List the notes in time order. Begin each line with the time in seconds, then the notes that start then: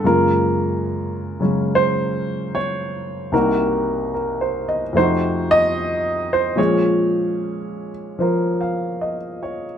0.04 F#2 C#3 G#3 A#3 F4 A#4
1.40 C#3 F#3 G#3 C#4
1.75 C5
2.55 C#5
3.32 C2 C3 A#3 D#4 F#4 A#4
4.14 A#4
4.41 C5
4.69 D#5
4.93 F2 C3 A3 C5
4.97 D#4 F#4
5.51 D#5
6.33 C5
6.56 A#2 F3 G#3 C#4 G#4 C#5
8.19 F3 A#4 C5
8.61 F5
9.01 D#5
9.43 C#5